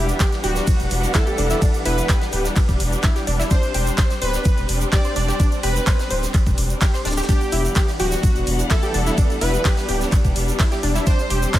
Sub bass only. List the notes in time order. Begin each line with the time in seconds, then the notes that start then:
Already playing: E1
0.44 D1
0.80 E1
0.91 E1
1.38 E1
1.85 E1
2.33 D1
2.69 E1
2.80 E1
3.27 E1
3.75 E1
4.22 D1
4.58 E1
4.69 E1
5.16 E1
5.63 E1
6.11 D1
6.47 E1
6.58 E1
7.05 D1
7.52 E1
8.00 D1
8.36 E1
8.47 E1
8.94 E1
9.41 E1
9.89 D1
10.25 E1
10.36 E1
10.83 E1
11.30 E1